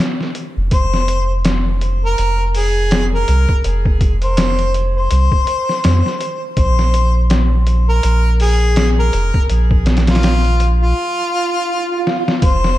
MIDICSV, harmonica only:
0, 0, Header, 1, 2, 480
1, 0, Start_track
1, 0, Tempo, 731707
1, 470, Time_signature, 4, 2, 24, 8
1, 8386, End_track
2, 0, Start_track
2, 0, Title_t, "Harmonica"
2, 0, Program_c, 0, 22
2, 477, Note_on_c, 0, 72, 98
2, 912, Note_off_c, 0, 72, 0
2, 1348, Note_on_c, 0, 70, 92
2, 1649, Note_off_c, 0, 70, 0
2, 1683, Note_on_c, 0, 68, 83
2, 2013, Note_off_c, 0, 68, 0
2, 2057, Note_on_c, 0, 70, 87
2, 2364, Note_off_c, 0, 70, 0
2, 2780, Note_on_c, 0, 72, 87
2, 3199, Note_off_c, 0, 72, 0
2, 3262, Note_on_c, 0, 72, 94
2, 4235, Note_off_c, 0, 72, 0
2, 4319, Note_on_c, 0, 72, 99
2, 4754, Note_off_c, 0, 72, 0
2, 5177, Note_on_c, 0, 70, 93
2, 5483, Note_off_c, 0, 70, 0
2, 5522, Note_on_c, 0, 68, 94
2, 5853, Note_off_c, 0, 68, 0
2, 5899, Note_on_c, 0, 70, 94
2, 6205, Note_off_c, 0, 70, 0
2, 6614, Note_on_c, 0, 65, 90
2, 7036, Note_off_c, 0, 65, 0
2, 7094, Note_on_c, 0, 65, 94
2, 8071, Note_off_c, 0, 65, 0
2, 8156, Note_on_c, 0, 72, 99
2, 8386, Note_off_c, 0, 72, 0
2, 8386, End_track
0, 0, End_of_file